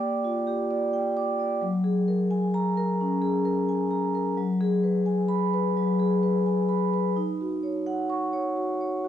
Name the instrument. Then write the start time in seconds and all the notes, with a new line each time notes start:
vibraphone
Already playing: A#3 G4 G5 D6
0.00 D5
0.24 F4
0.47 G4
0.71 D5
0.93 G5
1.17 D6
1.39 D5
1.61 F#3
1.84 G#4
2.08 A#4
2.31 G#5
2.54 A#5
2.77 A#4
3.01 C#4
3.22 G#4
3.45 A#4
3.69 G#5
3.91 A#5
4.15 A#4
4.37 F#3
4.61 G#4
4.83 B4
5.06 G#5
5.29 B5
5.54 B4
5.77 F#3
5.99 G#4
6.23 B4
6.46 G#5
6.69 B5
6.94 B4
7.16 D#4
7.41 F#4
7.63 C#5
7.87 F#5
8.10 C#6
8.33 C#5
8.56 F#4
8.81 C#5
9.04 F#4